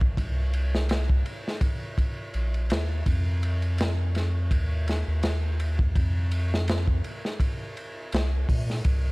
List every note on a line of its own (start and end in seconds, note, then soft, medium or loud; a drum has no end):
0.00 0.15 A#1 medium
0.00 kick loud
0.17 1.23 C2 loud
0.17 kick loud
0.17 ride medium
0.53 ride medium
0.75 snare medium
0.89 snare loud
0.89 ride medium
1.10 kick medium
1.26 ride medium
1.48 snare soft
1.61 kick loud
1.61 ride medium
1.98 kick medium
1.98 ride medium
2.34 2.73 A#1 medium
2.34 ride soft
2.54 ride soft
2.70 3.03 D#2 medium
2.70 snare loud
2.70 ride medium
3.06 4.53 F2 loud
3.06 kick loud
3.06 ride medium
3.43 ride medium
3.62 ride soft
3.78 snare loud
3.78 ride medium
4.15 snare soft
4.15 ride medium
4.51 5.04 D#2 medium
4.51 kick loud
4.51 ride loud
4.88 snare soft
4.88 ride medium
5.08 5.93 D#2 medium
5.23 snare loud
5.23 ride medium
5.60 ride medium
5.79 kick loud
5.95 7.01 F2 loud
5.95 kick loud
5.95 ride medium
6.31 ride medium
6.54 snare medium
6.68 snare loud
6.68 ride medium
6.87 kick loud
7.04 ride medium
7.25 snare soft
7.40 kick loud
7.40 ride medium
7.77 ride medium
8.12 8.45 C2 loud
8.12 snare loud
8.12 ride medium
8.49 8.81 A#2 loud
8.49 kick loud
8.49 open hi-hat medium
8.70 snare soft
8.85 9.12 C2 loud
8.85 kick loud
8.85 ride medium